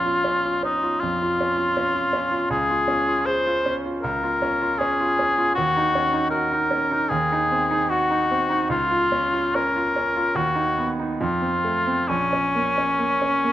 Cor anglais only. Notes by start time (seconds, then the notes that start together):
Already playing: F4
0.64 D#4
1.00 F4
2.51 G#4
3.26 C5
4.02 A#4
4.78 G#4
5.55 F#4
6.30 A#4
7.09 G#4
7.89 F#4
8.70 F4
9.55 A#4
10.36 F#4
11.19 F4
12.08 C#4